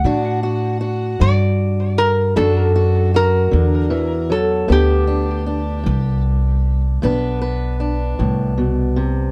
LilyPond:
<<
  \new Staff \with { instrumentName = "Resonator guitar played with a steel bar" } { \time 12/8 \key g \major \tempo 4. = 51 fis''4. d''4 bes'8 a'4 bes'4. a'8 | g'2 r1 | }
  \new Staff \with { instrumentName = "Steel-string acoustic guitar" } { \time 12/8 \key g \major << { <d' fis'>8 fis'8 fis'2 <d' fis'>8 fis'8 fis'2 | <b d'>8 d'8 d'2 <b d' b'>8 b'8 d'2 | } \\ { d4 r8 d4 r8 d4 r8 d8 e8 fis8 | g,4 r8 g,4 r8 g,4 r8 a,8 b,8 c8 | } >> }
  \new Staff \with { instrumentName = "Upright bass" } { \clef bass \time 12/8 \key g \major a,4. g,4. fis,4. e,4. | d,4. c,4. b,,4. c,4. | }
>>